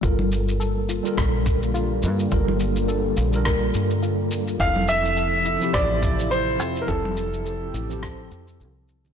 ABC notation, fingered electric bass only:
X:1
M:4/4
L:1/8
Q:"Swing 16ths" 1/4=105
K:Gdor
V:1 name="Fingered electric bass" clef=bass
G,,,3 z B,,,3 G,, | G,,,3 B,,,2 G,,3 | F,,,3 z A,,,3 F,, | F,,,3 A,,,2 F,, C,,2 |]